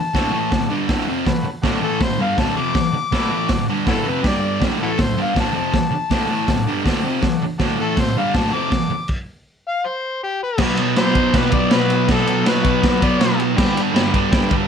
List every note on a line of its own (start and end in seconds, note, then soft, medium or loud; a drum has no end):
0.00 0.68 A5 loud
0.14 0.32 D2 loud
0.14 0.31 A2 loud
0.14 0.33 D3 medium
0.14 0.39 F#4 medium
0.14 0.39 A4 medium
0.14 0.39 C#5 medium
0.14 kick loud
0.14 snare medium
0.14 open hi-hat medium
0.32 0.51 A2 medium
0.32 0.51 E3 medium
0.32 0.51 A3 medium
0.50 0.67 D2 medium
0.50 0.67 A2 medium
0.50 0.75 F#4 medium
0.50 0.76 A4 medium
0.50 0.76 D5 loud
0.50 kick loud
0.50 snare loud
0.50 open hi-hat medium
0.70 0.88 G2 medium
0.70 0.89 D3 medium
0.70 0.89 G3 loud
0.88 1.07 D2 medium
0.88 1.07 A2 medium
0.88 1.08 D3 medium
0.88 1.13 F#4 medium
0.88 1.13 A4 medium
0.88 1.13 E5 medium
0.88 kick loud
0.88 snare loud
0.88 open hi-hat medium
1.07 1.25 F2 loud
1.07 1.26 C3 loud
1.07 1.26 F3 loud
1.26 1.50 F#4 medium
1.26 1.51 A4 medium
1.26 1.51 B4 loud
1.26 muted distorted electric guitar stroke medium
1.26 kick loud
1.26 snare loud
1.26 open hi-hat medium
1.44 muted distorted electric guitar stroke medium
1.62 1.81 D2 medium
1.62 1.80 A2 loud
1.62 1.82 D3 loud
1.62 1.87 F#4 loud
1.62 1.87 A4 medium
1.62 1.87 D5 loud
1.62 kick medium
1.62 snare loud
1.62 open hi-hat soft
1.81 2.00 A2 medium
1.81 2.00 E3 medium
1.81 2.01 A3 loud
1.81 2.01 A4 medium
1.99 2.16 D2 medium
1.99 2.16 A2 medium
1.99 2.24 F#4 medium
1.99 2.25 A4 medium
1.99 2.25 B4 medium
1.99 kick loud
1.99 snare loud
1.99 open hi-hat medium
2.03 2.20 C5 loud
2.19 2.37 G2 medium
2.19 2.38 D3 medium
2.19 2.38 G3 medium
2.19 2.41 F5 loud
2.37 2.56 D2 medium
2.37 2.56 A2 medium
2.37 2.56 D3 loud
2.37 2.62 F#4 medium
2.37 2.62 A4 medium
2.37 2.62 D5 medium
2.37 2.59 A5 medium
2.37 kick loud
2.37 snare loud
2.37 open hi-hat soft
2.56 2.74 F2 medium
2.56 2.75 C3 loud
2.56 2.75 F3 loud
2.56 3.66 D6 loud
2.74 2.99 F#4 medium
2.74 2.99 A4 medium
2.74 2.99 D5 medium
2.74 muted distorted electric guitar stroke medium
2.74 kick loud
2.74 snare loud
2.74 open hi-hat medium
2.93 muted distorted electric guitar stroke soft
3.11 3.30 D2 loud
3.11 3.30 A2 medium
3.11 3.30 D3 loud
3.11 3.36 F#4 medium
3.11 3.36 A4 medium
3.11 3.37 B4 loud
3.11 kick loud
3.11 snare loud
3.11 open hi-hat medium
3.32 3.49 A2 medium
3.32 3.50 E3 medium
3.32 3.50 A3 loud
3.48 3.65 D2 medium
3.48 3.65 A2 medium
3.48 3.73 F#4 medium
3.48 3.73 A4 medium
3.48 3.74 D5 medium
3.48 kick loud
3.48 snare loud
3.48 open hi-hat medium
3.69 3.87 G2 medium
3.69 3.87 D3 medium
3.69 3.87 G3 loud
3.85 4.05 D2 medium
3.85 3.96 E4 medium
3.85 4.10 F#4 medium
3.85 3.96 F#4 medium
3.85 4.10 A4 medium
3.85 4.10 B4 medium
3.85 kick loud
3.85 snare loud
3.85 open hi-hat medium
3.89 4.06 A2 medium
3.89 4.06 D3 medium
4.06 4.24 F2 medium
4.06 4.25 C3 medium
4.06 4.25 F3 medium
4.06 4.25 B4 medium
4.23 4.61 G2 medium
4.23 4.61 D3 medium
4.23 4.61 G3 loud
4.23 4.48 D4 medium
4.23 4.48 G4 medium
4.23 4.48 D5 medium
4.23 kick loud
4.23 snare loud
4.23 open hi-hat soft
4.27 4.62 D5 loud
4.59 4.79 D2 medium
4.59 4.79 A2 loud
4.59 4.80 D3 loud
4.59 4.84 F#4 medium
4.59 4.85 A4 medium
4.59 4.85 D5 medium
4.59 kick medium
4.59 snare loud
4.59 open hi-hat soft
4.80 4.98 A2 medium
4.80 4.99 E3 loud
4.80 4.99 A3 medium
4.80 4.92 E4 medium
4.80 4.92 F#4 medium
4.80 5.03 A4 medium
4.98 5.14 D2 medium
4.98 5.14 A2 medium
4.98 5.23 F#4 medium
4.98 5.23 A4 medium
4.98 5.23 E5 medium
4.98 kick loud
4.98 snare loud
4.98 open hi-hat medium
5.02 5.19 C5 medium
5.17 5.34 G2 medium
5.17 5.35 D3 medium
5.17 5.36 G3 medium
5.22 5.38 F5 medium
5.34 5.53 D2 medium
5.34 5.53 A2 loud
5.34 5.54 D3 medium
5.34 5.60 F#4 medium
5.34 5.60 A4 medium
5.34 5.61 D5 medium
5.34 kick loud
5.34 snare loud
5.34 open hi-hat medium
5.40 5.56 A5 medium
5.53 5.72 F2 medium
5.53 5.72 C3 medium
5.53 5.73 F3 loud
5.53 6.64 A5 medium
5.72 5.98 F#4 medium
5.72 5.98 A4 medium
5.72 5.98 D5 medium
5.72 muted distorted electric guitar stroke medium
5.72 kick loud
5.72 snare medium
5.72 open hi-hat soft
5.91 muted distorted electric guitar stroke medium
6.10 6.28 D2 medium
6.10 6.28 A2 medium
6.10 6.29 D3 loud
6.10 6.35 F#4 medium
6.10 6.35 A4 medium
6.10 6.35 D5 loud
6.10 kick loud
6.10 snare loud
6.10 open hi-hat medium
6.29 6.47 A2 medium
6.29 6.48 E3 medium
6.29 6.48 A3 loud
6.48 6.63 D2 medium
6.48 6.63 A2 medium
6.48 6.73 F#4 medium
6.48 6.73 A4 medium
6.48 6.72 D5 medium
6.48 kick loud
6.48 snare loud
6.48 open hi-hat medium
6.67 6.84 G2 medium
6.67 6.84 D3 medium
6.67 6.85 G3 medium
6.84 7.03 D2 medium
6.84 7.04 A2 medium
6.84 7.04 D3 medium
6.84 7.09 F#4 medium
6.84 7.09 A4 medium
6.84 7.09 D5 loud
6.84 kick loud
6.84 snare loud
6.84 open hi-hat medium
7.04 7.21 F2 medium
7.04 7.22 C3 loud
7.04 7.23 F3 medium
7.21 7.46 F#4 medium
7.21 7.46 A4 medium
7.21 7.47 D5 medium
7.21 muted distorted electric guitar stroke medium
7.21 kick medium
7.21 snare medium
7.21 open hi-hat soft
7.42 muted distorted electric guitar stroke medium
7.58 7.78 D2 loud
7.58 7.78 A2 loud
7.58 7.78 D3 medium
7.58 7.83 F#4 medium
7.58 7.83 A4 medium
7.58 7.83 D5 loud
7.58 kick loud
7.58 snare loud
7.58 open hi-hat soft
7.80 7.97 A2 loud
7.80 7.98 E3 medium
7.80 7.98 A3 loud
7.80 7.98 A4 loud
7.96 8.13 D2 medium
7.96 8.13 A2 medium
7.96 8.21 F#4 medium
7.96 8.21 A4 medium
7.96 8.21 E5 medium
7.96 kick loud
7.96 snare loud
7.96 open hi-hat medium
8.00 8.17 C5 medium
8.17 8.34 G2 medium
8.17 8.35 D3 medium
8.17 8.35 G3 loud
8.17 8.38 F5 medium
8.34 8.53 D2 medium
8.34 8.53 A2 medium
8.34 8.54 D3 medium
8.34 8.59 F#4 medium
8.34 8.59 A4 medium
8.34 8.59 D5 medium
8.34 8.55 A5 medium
8.34 kick loud
8.34 snare loud
8.34 open hi-hat medium
8.54 8.71 F2 medium
8.54 8.72 C3 loud
8.54 8.72 F3 medium
8.54 9.08 D6 medium
8.71 8.97 F#4 medium
8.71 8.97 A4 medium
8.71 8.97 D5 medium
8.71 muted distorted electric guitar stroke medium
8.71 kick loud
8.71 snare loud
8.71 open hi-hat soft
8.90 muted distorted electric guitar stroke medium
9.08 kick medium
9.08 crash medium
9.68 9.88 F5 loud
9.86 10.21 C5 medium
10.24 10.41 G4 medium
10.43 10.60 B4 medium
10.58 10.96 B2 medium
10.58 10.80 F#3 loud
10.58 10.77 B3 loud
10.58 10.83 F#4 medium
10.58 10.83 B4 medium
10.58 10.83 D5 medium
10.58 kick loud
10.58 snare loud
10.58 crash loud
10.77 10.97 F#3 medium
10.77 10.99 B3 medium
10.77 ride medium
10.95 11.70 B2 medium
10.95 11.18 F#3 medium
10.95 11.14 B3 loud
10.95 11.20 F#4 medium
10.95 11.20 B4 medium
10.95 11.37 C5 loud
10.95 11.20 D5 medium
10.95 snare loud
10.95 ride loud
11.14 11.54 F#3 medium
11.14 11.51 B3 medium
11.14 kick medium
11.14 ride medium
11.33 11.58 F#4 medium
11.33 11.58 B4 medium
11.33 11.57 B4 medium
11.33 11.58 D5 medium
11.33 kick loud
11.33 snare loud
11.33 ride loud
11.51 11.71 F#3 medium
11.51 11.73 B3 medium
11.51 kick medium
11.51 ride medium
11.55 11.72 D5 medium
11.70 12.07 B2 medium
11.70 12.09 F#3 medium
11.70 12.11 B3 medium
11.70 11.95 F#4 medium
11.70 11.95 B4 medium
11.70 12.08 B4 loud
11.70 11.95 D5 medium
11.70 snare loud
11.70 ride loud
11.90 ride medium
12.08 12.44 B2 loud
12.08 12.29 F#3 medium
12.08 12.26 B3 loud
12.08 12.33 F#4 medium
12.08 12.46 A4 medium
12.08 12.33 B4 medium
12.08 12.33 D5 medium
12.08 kick loud
12.08 snare loud
12.08 ride loud
12.27 12.46 F#3 medium
12.27 12.48 B3 medium
12.27 ride medium
12.45 12.83 B2 medium
12.45 12.66 F#3 loud
12.45 12.64 B3 loud
12.45 12.70 F#4 medium
12.45 12.70 B4 medium
12.45 13.02 B4 medium
12.45 12.70 C#5 medium
12.45 snare loud
12.45 ride loud
12.64 13.03 F#3 medium
12.64 13.01 B3 medium
12.64 kick medium
12.64 ride medium
12.82 13.06 F#4 medium
12.82 13.07 B4 medium
12.82 13.07 D5 medium
12.82 kick loud
12.82 snare loud
12.82 ride loud
13.01 13.19 F#3 medium
13.01 13.21 B3 medium
13.01 13.39 D5 medium
13.01 kick medium
13.01 ride medium
13.19 13.55 B2 medium
13.19 13.57 F#3 medium
13.19 13.59 B3 medium
13.19 13.44 F#4 medium
13.19 13.45 B4 medium
13.19 13.44 D5 medium
13.19 snare loud
13.19 ride loud
13.40 ride medium
13.56 13.92 G2 loud
13.56 13.78 D3 loud
13.56 13.76 G3 loud
13.56 13.81 G4 loud
13.56 13.81 B4 loud
13.56 13.82 D5 loud
13.56 kick loud
13.56 snare loud
13.56 crash loud
13.76 13.94 D3 medium
13.76 13.96 G3 medium
13.76 ride medium
13.93 14.68 G2 medium
13.93 14.15 D3 medium
13.93 14.12 G3 loud
13.93 14.19 G4 medium
13.93 14.19 B4 medium
13.93 14.19 D5 medium
13.93 snare loud
13.93 ride loud
14.13 14.52 D3 medium
14.13 14.49 G3 medium
14.13 kick medium
14.13 ride medium
14.31 14.56 G4 medium
14.31 14.56 B4 medium
14.31 14.56 D5 medium
14.31 kick loud
14.31 snare loud
14.31 ride loud
14.50 14.68 D3 medium
14.50 14.68 G3 medium
14.50 kick medium
14.50 ride medium